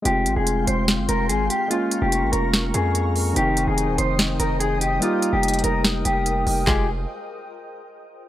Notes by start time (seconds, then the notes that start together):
0.02 F1 G#3 C4 F4 G4 F5 G5 C6, closed hi-hat
0.26 G#1, closed hi-hat
0.36 F1 G#4
0.47 closed hi-hat
0.67 F1 C5, closed hi-hat
0.88 snare, closed hi-hat
0.98 G1
1.09 F1 A#4, closed hi-hat
1.29 G#1 G#4, closed hi-hat
1.50 G4, closed hi-hat
1.68 G#3 A#3 C#4 F4 A#4 A#5 C#6, closed hi-hat
1.74 F4
1.91 closed hi-hat
2.02 F1 G4
2.12 closed hi-hat
2.23 G#1
2.32 F1 A#4, closed hi-hat
2.54 snare, closed hi-hat
2.74 F2 G#4, closed hi-hat
2.95 closed hi-hat
3.16 open hi-hat
3.33 F1 D#3 C4 D#4 G4 C5 D#5 G5 D#6, closed hi-hat
3.57 closed hi-hat
3.67 F1 G#4
3.78 closed hi-hat
3.88 D#1
3.98 F1 C5, closed hi-hat
4.19 snare, closed hi-hat
4.40 F1 A#4, closed hi-hat
4.60 G#4, closed hi-hat
4.81 G4, closed hi-hat
4.99 G3 A#3 D#4 F4 A#4, closed hi-hat
5.04 G4
5.22 closed hi-hat
5.33 F1 G4
5.43 closed hi-hat
5.48 closed hi-hat
5.54 closed hi-hat
5.59 closed hi-hat
5.64 F1 A#4, closed hi-hat
5.85 snare, closed hi-hat
6.05 F1 G4, closed hi-hat
6.26 closed hi-hat
6.47 F1, open hi-hat
6.67 F1 G#3 F4 G4 G#4, kick, snare, clap